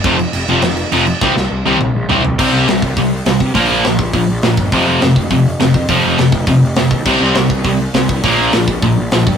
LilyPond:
<<
  \new Staff \with { instrumentName = "Distorted electric guitar" } { \clef bass \time 4/4 \key c \dorian \tempo 4 = 205 <f, c f>8 r4 <f, c f>8 r4 <f, c f>8 r8 | <c g c'>8 r4 <c g c'>8 r4 <c g c'>8 r8 | <c g c'>4 <c g>8 r8 <c g>8 r8 <c g>8 r8 | <bes, f bes>4 <bes, f>8 r8 <bes, f>8 r8 <bes, f>8 r8 |
<f, c f>4 <f, c>8 r8 <f, c>8 r8 <f, c>8 r8 | <f, c f>4 <f, c>8 r8 <f, c>8 r8 <f, c>8 r8 | <c g c'>4 <c g>8 r8 <c g>8 r8 <c g>8 r8 | <bes, f bes>4 <bes, f>8 r8 <bes, f>8 r8 <bes, f>8 r8 | }
  \new Staff \with { instrumentName = "Picked electric bass" } { \clef bass \time 4/4 \key c \dorian f,,4 f,,8 f,,8 f,,4 f,,4 | c,8 c,8 c,8 c,8 c,8 bes,,8 c,8 c,8 | c,8 c,8 c,8 c,8 c,4 c,8 c8 | bes,,8 bes,,8 bes,,8 bes,,8 bes,,8 bes,,8 bes,,8 g,,8 |
f,,8 f,,8 f,,8 f,,8 f,,4 f,,8 f,8 | f,,8 f,,8 f,,8 f,,8 f,,8 f,,8 f,,8 ees,8 | c,8 c,8 c,8 c,8 c,4 c,8 c,8 | bes,,8 bes,,8 bes,,8 bes,,8 bes,,8 bes,,8 bes,,8 g,8 | }
  \new DrumStaff \with { instrumentName = "Drums" } \drummode { \time 4/4 <cymc bd>8 cymc8 cymc8 cymc8 <cymc sn>8 cymc8 cymc8 cymc8 | <bd sn>8 sn8 r8 tommh8 toml4 tomfh8 tomfh8 | <cymc bd>4 <hho sn>8 bd8 <hho bd>4 <hho sn>8 bd8 | <hho bd>4 <hho sn>8 bd8 <hho bd>4 <hho sn>8 bd8 |
<hho bd>4 <hho sn>8 bd8 <hho bd>4 <hho sn>8 bd8 | <hho bd>4 <hho sn>8 bd8 <hho bd>4 <hho sn>8 bd8 | <cymc bd>4 <hho sn>8 bd8 <hho bd>4 <hho sn>8 bd8 | <hho bd>4 <hho sn>8 bd8 <hho bd>4 <hho sn>8 bd8 | }
>>